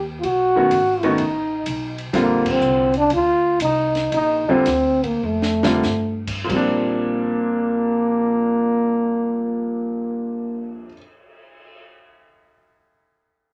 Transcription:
Already playing: D#2
0.20 B1 F4 F#4, ride
0.56 D#3 A3 B3 C#4 F#4
0.71 G#1, hi-hat pedal, ride
1.03 D#3 A3 B3 C#4 D#4 F#4, ride
1.18 A1, ride
1.66 B1, hi-hat pedal, ride
1.98 ride
2.13 A#1 D3 G3 A#3 C4 F4, snare, ride
2.19 A#3
2.46 kick, crash
2.51 C4
2.61 C2, hi-hat pedal
2.94 D4, ride
3.10 D2 F4, ride
3.60 C2 D#4, hi-hat pedal, ride
3.95 snare, ride
4.12 A#1 D#4, ride
4.49 D3 G3 A#3 C4 F4, muted upright bass stroke
4.66 D2, snare, hi-hat pedal, ride
5.04 A#3, kick, ride
5.23 F2 A3
5.42 snare
5.63 D3 G3 A#3 C4 F4, snare
5.83 G2, snare, hi-hat pedal
6.27 kick, crash
6.44 A#2 F3
6.49 A#1 G3 A#3 C4, kick, crash
6.56 D4
6.96 cymbal swell

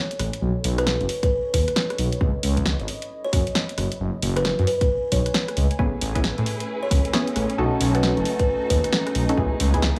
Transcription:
Already playing: A4 C#5 G#5 B5
0.11 closed hi-hat
0.19 A1, cross-stick, open hi-hat
0.33 closed hi-hat
0.42 B1
0.64 B1, open hi-hat
0.78 B4, cross-stick, closed hi-hat
0.87 snare
1.01 F#1, closed hi-hat
1.09 D#5, open hi-hat
1.23 B4, kick, closed hi-hat
1.54 D#2 B4, kick, open hi-hat
1.68 cross-stick, closed hi-hat
1.76 snare
1.90 cross-stick, closed hi-hat
1.98 B1, open hi-hat
2.12 closed hi-hat
2.21 C#2 E4, kick
2.43 C#2, open hi-hat
2.57 kick, closed hi-hat
2.66 snare
2.80 G#1, closed hi-hat
2.88 open hi-hat
3.02 closed hi-hat
3.25 C#5
3.33 F#2, kick, cross-stick, open hi-hat
3.47 closed hi-hat
3.55 snare
3.69 closed hi-hat
3.78 F#1, cross-stick, open hi-hat
3.92 closed hi-hat
4.00 F#1 G#5
4.22 F#1, open hi-hat
4.34 A3 B4, cross-stick, closed hi-hat
4.45 snare
4.59 F#2, closed hi-hat
4.67 B4, open hi-hat
4.81 B4, kick, closed hi-hat
5.12 B1 C#5, kick, open hi-hat
5.26 cross-stick, closed hi-hat
5.34 snare
5.48 cross-stick, closed hi-hat
5.57 C#2, open hi-hat
5.71 closed hi-hat
5.79 A1 B3 C#4 E4 G#4 B4, kick
6.01 A1, open hi-hat
6.15 B3 C#4 E4 G#4, kick, closed hi-hat
6.24 snare
6.38 A2, closed hi-hat
6.46 open hi-hat
6.60 closed hi-hat
6.83 C#5
6.91 C#2, kick, cross-stick, open hi-hat
7.05 closed hi-hat
7.13 B3 C#4 E4 G#4, snare
7.27 closed hi-hat
7.36 A1, cross-stick, open hi-hat
7.50 closed hi-hat
7.58 B1 C#4 D#4 F#4 A4
7.81 B1, open hi-hat
7.88 D#5
7.95 C#4 D#4 F#4 A4 B4, cross-stick, closed hi-hat
8.03 snare
8.17 F#1, closed hi-hat
8.25 open hi-hat
8.39 B4, kick, closed hi-hat
8.70 D#2 B4, kick, open hi-hat
8.84 cross-stick, closed hi-hat
8.93 snare
9.07 cross-stick, closed hi-hat
9.15 B1, open hi-hat
9.29 C#4 D#4 F#4 A4, closed hi-hat
9.37 C#2 E3 B3 D#4 E4 G#4, kick
9.56 C#5, open hi-hat
9.60 C#2
9.74 B3 D#4 E4 G#4, kick, closed hi-hat
9.82 snare

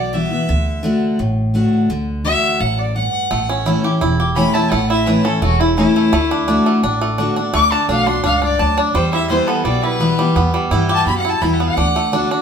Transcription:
Already playing: B1 B2 D5
0.13 E3 G3 B3 E4 E5
0.31 B3 E4
0.49 D2 D3
0.83 D3 A3 D4 F#4
1.19 A1 A2
1.54 D3 A3 D4 F#4
1.90 D2 D3
2.24 D3 A3 D4 F#4 E5
2.60 A1 F#2 F#5
2.79 D5
2.95 G2 F#5
3.31 A1 A2 A3
3.49 C#4
3.66 E3 A3 C#4 E4
3.84 C#4 E4 G4
4.01 E1 E2 E4
4.20 G4
4.35 E3 A3 C#4 E4 B5
4.54 E4 A5
4.71 A1 A2 A3 F#5
4.90 E4 E5
5.06 E3 A3 C#4 E4 B4
5.24 C#4 E4 A4
5.42 E1 E2 A3 F#4
5.60 E4
5.76 E3 A3 C#4 E4
5.96 A3
6.12 D2 D3 A3
6.31 D4
6.48 D3 A3 D4 F#4
6.66 A3
6.83 A1 A2 D4
7.01 A3
7.18 D3 A3 D4 F#4
7.36 D4 F#4
7.53 D2 D3 A3 D6
7.72 D4 A5
7.89 B1 D3 A3 D4 F#4 F5
8.07 D4 F#4 C6
8.24 C#2 G2 D4 F5
8.42 D4 D5
8.59 D2 F#2 D4 A5
8.77 D4 D5
8.94 E2 G3 C5
9.13 E4 E5
9.29 E3 G3 B3 E4 C5
9.47 B3 A4
9.64 B1 B2 G3 D5
9.83 E4 B4
10.00 E3 G3 B3 E4
10.19 G3 B3 E4
10.35 E2 B3
10.54 G3
10.71 G2 E3 G3 B3 E4
10.89 G4
10.94 A5
11.06 F#2 B2 B5
11.17 F#5
11.25 E4
11.29 A5
11.41 E2 E3 G3 B3 E4 B5
11.53 F#5
11.60 B3
11.66 F#5
11.77 D2 D3 D4
11.96 A3
12.12 D3 A3 D4 F#4
12.30 D4 F#4

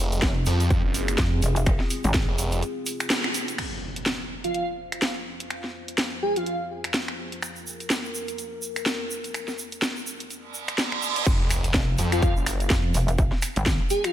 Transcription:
Already playing: F1 C4 F4 G#4
0.12 closed hi-hat, shaker
0.22 F1, kick, snare, closed hi-hat, shaker
0.46 F2, open hi-hat, shaker
0.60 closed hi-hat, shaker
0.70 kick, closed hi-hat, shaker
0.84 F#1
0.94 open hi-hat, shaker
1.08 finger snap, closed hi-hat, shaker
1.18 F2, kick, snare, closed hi-hat, shaker
1.42 F1, open hi-hat, shaker
1.56 closed hi-hat, shaker
1.66 finger snap, kick, closed hi-hat, shaker
1.80 snare
1.90 open hi-hat, shaker
2.04 G#1, closed hi-hat, shaker
2.14 kick, snare, closed hi-hat, shaker
2.28 F1
2.38 F1, open hi-hat, shaker
2.52 closed hi-hat, shaker
2.62 closed hi-hat, shaker
2.86 open hi-hat, shaker
3.00 finger snap, closed hi-hat, shaker
3.10 snare, closed hi-hat, shaker
3.24 finger snap
3.34 open hi-hat, shaker
3.48 closed hi-hat, shaker
3.58 F3 F4 C5, finger snap, closed hi-hat, crash, impact
3.96 closed hi-hat
4.06 snare, closed hi-hat
4.44 F4, closed hi-hat
4.54 F4, closed hi-hat
4.92 finger snap, closed hi-hat
5.02 snare, closed hi-hat
5.40 closed hi-hat
5.50 finger snap, closed hi-hat
5.64 snare
5.88 closed hi-hat
5.98 snare, closed hi-hat
6.23 G#4
6.36 F4, closed hi-hat
6.46 F4, closed hi-hat
6.84 finger snap, closed hi-hat
6.94 snare, closed hi-hat
7.08 finger snap
7.32 closed hi-hat
7.42 A#4, finger snap, closed hi-hat, shaker
7.56 shaker
7.67 shaker
7.80 closed hi-hat, shaker
7.90 snare, closed hi-hat, shaker
8.05 shaker
8.15 shaker
8.28 closed hi-hat, shaker
8.38 closed hi-hat, shaker
8.62 shaker
8.76 finger snap, closed hi-hat, shaker
8.86 snare, closed hi-hat, shaker
9.11 shaker
9.24 closed hi-hat, shaker
9.34 finger snap, closed hi-hat, shaker
9.48 snare, shaker
9.59 shaker
9.72 closed hi-hat, shaker
9.82 snare, closed hi-hat, shaker
9.96 shaker
10.07 shaker
10.20 closed hi-hat, shaker
10.30 closed hi-hat, reverse cymbal, shaker
10.54 shaker
10.68 finger snap, closed hi-hat, shaker
10.78 snare, closed hi-hat, shaker
10.92 finger snap
11.02 shaker
11.16 closed hi-hat, shaker
11.26 F1, kick, closed hi-hat, crash, sub drop, shaker
11.50 finger snap, open hi-hat, shaker
11.64 closed hi-hat, shaker
11.74 F1, kick, snare, closed hi-hat, shaker
11.98 F2, open hi-hat, shaker
12.12 F4, finger snap, closed hi-hat, shaker
12.22 F4, kick, closed hi-hat, shaker
12.36 F#1, shaker
12.46 finger snap, open hi-hat, shaker
12.60 closed hi-hat, shaker
12.70 F2, kick, snare, closed hi-hat, shaker
12.94 F1, open hi-hat, shaker
13.08 closed hi-hat, shaker
13.18 kick, closed hi-hat, shaker
13.32 snare
13.42 finger snap, open hi-hat, shaker
13.56 G#1, closed hi-hat, shaker
13.66 kick, snare, closed hi-hat, shaker
13.90 G#4, open hi-hat, shaker
14.04 F4, finger snap, closed hi-hat, shaker

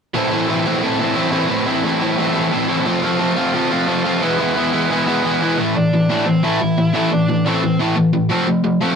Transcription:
0.14 A2 E3 A3 C4 E4
0.31 A2 E3 A3 C4 E4
0.47 A2 E3 A3 C4 E4
0.65 A2 E3 A3 C4 E4
0.81 A2 E3 A3 C4 E4
0.99 A2 E3 A3 C4 E4
1.14 A2 E3 A3 C4 E4
1.31 A2 E3 A3 C4 E4
1.49 A2 E3 A3 C4 E4
1.66 A2 E3 A3 C4 E4
1.83 A2 E3 A3 C4 E4
2.01 A2 E3 A3 C4 E4
2.17 A2 E3 A3 C4 E4
2.34 A2 E3 A3 C4 E4
2.52 A2 E3 A3 C4 E4
2.68 A2 E3 A3 C4 E4
2.85 F3 A3 C4 F4
3.02 F3 A3 C4 F4
3.18 F3 A3 C4 F4
3.36 F3 A3 C4 F4
3.53 F3 A3 C4 F4
3.71 F3 A3 C4 F4
3.87 F3 A3 C4 F4
4.04 F3 A3 C4 F4
4.22 E3 G#3 B3 E4
4.38 E3 G#3 B3 E4
4.55 E3 G#3 B3 E4
4.73 E3 G#3 B3 E4
4.90 E3 G#3 B3 E4
5.06 E3 G#3 B3 E4
5.24 E3 G#3 B3 E4
5.42 E3 G#3 B3 E4
5.58 A2 E3 A3
5.75 A2 E3 D4 D5
5.93 A2 E3
6.09 A2 E3 A3
6.26 A2 E3 C4 C5
6.43 A2 E3 A3 E4 E5
6.61 A2 E3
6.78 A2 E3
6.93 A2 E3 A3 E4 E5
7.11 A2 E3 D4 D5
7.28 A2 E3
7.46 A2 E3 A3 C4 C5
7.63 A2 E3
7.79 A2 E3 A3
7.96 A2 E3
8.13 A2 E3
8.29 F3 A3 C4
8.47 F3 A3
8.64 F3 A3
8.81 F3 A3 C4

